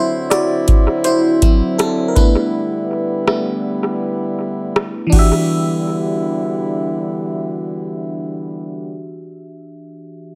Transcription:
Already playing: D3 F#3 C4 E4 C5
0.30 F#4 D5, cross-stick, closed hi-hat
0.68 kick, closed hi-hat
1.04 E4 C5, closed hi-hat
1.42 F#3 C4 E4, kick, closed hi-hat
1.78 C4 A4, cross-stick, closed hi-hat
2.08 A#4
2.15 G3 A3 B3 D4 E4 B4, kick, closed hi-hat
3.28 A3 B3 E4, cross-stick
4.76 cross-stick
5.07 E3 D4
5.12 D3 G3 B3 E4 F#4 G4, kick, crash
5.19 E5

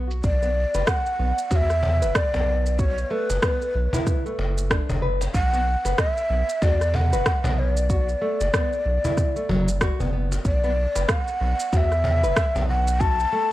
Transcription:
Already playing: B1
0.11 shaker
0.24 B1 D5, kick, shaker
0.43 B3, shaker
0.74 F#1 B4, cajon slap, shaker
0.87 F#5, kick, cross-stick, shaker
1.06 shaker
1.19 B1 B3
1.38 shaker
1.51 E2 F#4 F#5, kick, cajon slap, shaker
1.56 E5
1.70 cross-stick, shaker
1.83 cajon bass, cajon slap
2.02 F#1 B4, shaker
2.15 D5, kick, cross-stick, shaker
2.34 B1 B3, cajon bass, cajon slap, shaker
2.66 shaker
2.79 F#4 C#5, kick, shaker
2.98 shaker
3.11 A3 B4
3.30 F#1, cajon slap, shaker
3.42 B3, kick, cross-stick, shaker
3.62 shaker
3.75 B1
3.93 E4, cajon bass, shaker
4.07 kick, cross-stick, shaker
4.26 A3, shaker
4.38 F#1, cajon slap
4.58 shaker
4.70 D4, kick, cross-stick, shaker
4.89 F#1, cajon bass, shaker
5.02 B4
5.21 cajon slap, shaker
5.34 B1 F#5, kick, shaker
5.53 B3, shaker
5.85 F#1 B4, cajon slap, shaker
5.98 D#5, kick, cross-stick, shaker
6.11 E5
6.17 shaker
6.30 B1 B3
6.49 shaker
6.62 E2 F#4 D5, kick, cajon slap, shaker
6.81 cross-stick, shaker
6.94 F#5, cajon bass, cajon slap
7.13 F#1 B4, shaker
7.26 kick, cross-stick, shaker
7.44 B1 B3, cajon bass, cajon slap, shaker
7.59 C#5
7.74 D5, shaker
7.90 F#4, kick, shaker
8.09 shaker
8.22 A3
8.41 F#1, cajon slap, shaker
8.54 B3, kick, cross-stick, shaker
8.73 shaker
8.86 B1
9.04 E4, cajon bass, shaker
9.17 kick, cross-stick, shaker
9.36 A3, shaker
9.49 F#1 F#3, cajon bass, cajon slap
9.68 shaker
9.81 F#4, kick, cross-stick, shaker
10.00 F#1 B3, cajon bass, shaker
10.13 B3
10.32 cajon slap, shaker
10.45 B1 D5, kick, shaker
10.64 B3, shaker
10.96 F#1 B4, cajon slap, shaker
11.09 F#5, kick, cross-stick, shaker
11.28 shaker
11.41 B1 B3
11.60 shaker
11.73 E2 F#4 E5 F#5, kick, cajon slap, shaker
11.92 cross-stick, shaker
12.04 cajon bass, cajon slap
12.24 F#1 B4, shaker
12.36 kick, cross-stick, shaker
12.56 B1 B3, cajon bass, cajon slap, shaker
12.69 F#5
12.87 shaker
13.00 F#4 A5, kick, shaker
13.20 shaker
13.33 A3

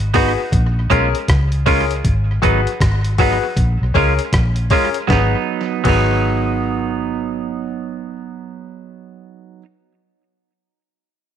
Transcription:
Already playing: G#1
0.00 closed hi-hat
0.14 B3 D#4 F#4 G#4 B4, kick, cross-stick, open hi-hat
0.38 muted clean electric guitar stroke
0.52 A#1, kick, closed hi-hat
0.90 B1 G#3 C#4 F4 G#4 A#4, kick, closed hi-hat
1.15 closed hi-hat
1.28 C#2, kick, cross-stick, closed hi-hat
1.52 closed hi-hat
1.66 G#3 C#4 F4 G#4 A#4, kick, open hi-hat
1.91 closed hi-hat
2.05 G#1, kick, closed hi-hat
2.42 G#1 F#3 B3 D#4 F#4 G#4 B4, kick, closed hi-hat
2.67 closed hi-hat
2.81 G#1, kick, cross-stick, closed hi-hat
3.05 closed hi-hat
3.18 F#3 B3 D#4 F#4 G#4 B4, kick, open hi-hat
3.44 muted clean electric guitar stroke
3.57 A#1, kick, closed hi-hat
3.81 B1
3.94 C#2 G#3 C#4 F4 G#4 A#4, kick, open hi-hat
4.19 closed hi-hat
4.33 A#1, kick, cross-stick, closed hi-hat
4.56 closed hi-hat
4.70 G#3 C#4 F4 G#4 A#4, kick, open hi-hat
4.94 closed hi-hat
5.08 G#1 F#3 B3 F#4 G#4 B4, kick, snare
5.13 D#4
5.84 G#1 F#3 B3 F#4 G#4 B4, kick, crash
5.89 D#4

